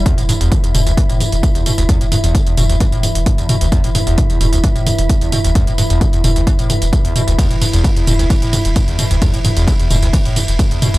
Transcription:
<<
  \new Staff \with { instrumentName = "Synth drone" } { \time 4/4 \key a \dorian \tempo 4 = 131 <e e'>1~ | <e e'>1~ | <e e'>1~ | <e e'>1~ |
<e e'>1~ | <e e'>1 | }
  \new Staff \with { instrumentName = "Acid bass" } { \clef bass \time 4/4 \key a \dorian e,16 a,16 g,16 e,16 e16 e,16 b,16 d,16 e16 a,16 d,16 e,,16 r16 e,16 b,16 d,16 | e,16 a,16 g,16 e,16 e16 e,16 b,16 d,16 e16 a,16 d,16 e,,16 r16 e,16 b,16 d,16 | e,16 a,16 g,16 e,16 e16 e,16 b,16 d,16 e16 a,16 d,16 e,,16 r16 e,16 b,16 d,16 | e,16 a,16 g,16 e,16 e16 e,16 b,16 d,16 e16 a,16 d,16 e,,16 r16 e,16 b,16 d,16 |
e,16 a,16 g,16 e,16 e16 e,16 b,16 d,16 e16 a,16 d,16 e,,16 r16 e,16 b,16 d,16 | e,16 a,16 g,16 e,16 e16 e,16 b,16 d,16 e16 a,16 d,16 e,,16 r16 e,16 b,16 d,16 | }
  \new Staff \with { instrumentName = "Sub bass" } { \clef bass \time 4/4 \key a \dorian r16 e,,16 r16 e,,16 r8 e,,16 e,,16 r16 e,,16 r16 e,,16 r16 e,,16 r16 e,,16 | r16 e,,16 r16 e,,16 r8 e,,16 e,,16 r16 e,,16 r16 e,,16 r16 e,,16 r16 e,,16 | r16 e,,16 r16 e,,16 r8 e,,16 e,,16 r16 e,,16 r16 e,,16 r16 e,,16 r16 e,,16 | r16 e,,16 r16 e,,16 r8 e,,16 e,,16 r16 e,,16 r16 e,,16 r16 e,,16 r16 e,,16 |
r16 e,,16 r16 e,,16 r8 e,,16 e,,16 r16 e,,16 r16 e,,16 r16 e,,16 r16 e,,16 | r16 e,,16 r16 e,,16 r8 e,,16 e,,16 r16 e,,16 r16 e,,16 r16 e,,16 r16 e,,16 | }
  \new DrumStaff \with { instrumentName = "Drums" } \drummode { \time 4/4 <hh bd tamb toml>16 <hh tamb>16 <hho tamb toml>16 <hh tamb>16 <hh bd tamb toml>16 <hh tamb>16 <hho tamb toml>16 <hh tamb>16 <hh bd tamb toml>16 <hh tamb>16 <hho tamb toml>16 <hh tamb>16 <hh bd tamb toml>16 <hh tamb>16 <hho tamb toml>16 <hh tamb>16 | <hh bd tamb toml>16 <hh tamb>16 <hho tamb toml>16 <hh tamb>16 <hh bd tamb toml>16 <hh tamb>16 <hho tamb toml>16 <hh tamb>16 <hh bd tamb toml>16 <hh tamb>16 <hho tamb toml>16 <hh tamb>16 <hh bd tamb toml>16 <hh tamb>16 <hho tamb toml>16 <hh tamb>16 | <hh bd tamb toml>16 <hh tamb>16 <hho tamb toml>16 <hh tamb>16 <hh bd tamb toml>16 <hh tamb>16 <hho tamb toml>16 <hh tamb>16 <hh bd tamb toml>16 <hh tamb>16 <hho tamb toml>16 <hh tamb>16 <hh bd tamb toml>16 <hh tamb>16 <hho tamb toml>16 <hh tamb>16 | <hh bd tamb toml>16 <hh tamb>16 <hho tamb toml>16 <hh tamb>16 <hh bd tamb toml>16 <hh tamb>16 <hho tamb toml>16 <hh tamb>16 <hh bd tamb toml>16 <hh tamb>16 <hho tamb toml>16 <hh tamb>16 <hh bd tamb toml>16 <hh tamb>16 <hho tamb toml>16 <hh tamb>16 |
<hh bd cymr tamb toml>16 <hh tamb>16 <hho tamb toml>16 <hh tamb>16 <hh bd cymr tamb toml>16 <hh tamb>16 <hho tamb toml>16 <hh tamb>16 <hh bd cymr tamb toml>16 <hh tamb>16 <hho tamb toml>16 <hh tamb>16 <hh bd cymr tamb toml>16 <hh tamb>16 <hho tamb toml>16 <hh tamb>16 | <hh bd cymr tamb toml>16 <hh tamb>16 <hho tamb toml>16 <hh tamb>16 <hh bd cymr tamb toml>16 <hh tamb>16 <hho tamb toml>16 <hh tamb>16 <hh bd cymr tamb toml>16 <hh tamb>16 <hho tamb toml>16 <hh tamb>16 <hh bd cymr tamb toml>16 <hh tamb>16 <hho tamb toml>16 <hh tamb>16 | }
>>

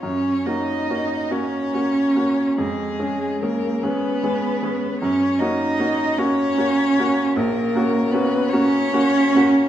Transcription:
<<
  \new Staff \with { instrumentName = "Violin" } { \time 6/8 \key fis \major \tempo 4. = 49 cis''8 dis''4 cis''4. | gis'4 ais'8 b'4. | cis''8 dis''4 cis''4. | ais'4 b'8 cis''4. | }
  \new Staff \with { instrumentName = "Cello" } { \time 6/8 \key fis \major cis'8 dis'4 cis'4. | gis4 ais8 b4. | cis'8 dis'4 cis'4. | ais4 b8 cis'4. | }
  \new Staff \with { instrumentName = "Grand piano" } { \time 6/8 \key fis \major fis,8 <ais cis' fis'>8 <ais cis' fis'>8 <ais cis' fis'>8 <ais cis' fis'>8 <ais cis' fis'>8 | eis,8 <gis cis' gis'>8 <gis cis' gis'>8 <gis cis' gis'>8 <gis cis' gis'>8 <gis cis' gis'>8 | fis,8 <ais cis' fis'>8 <ais cis' fis'>8 <ais cis' fis'>8 <ais cis' fis'>8 <ais cis' fis'>8 | ais,,8 <ais cis' fis'>8 <ais cis' fis'>8 <ais cis' fis'>8 <ais cis' fis'>8 <ais cis' fis'>8 | }
>>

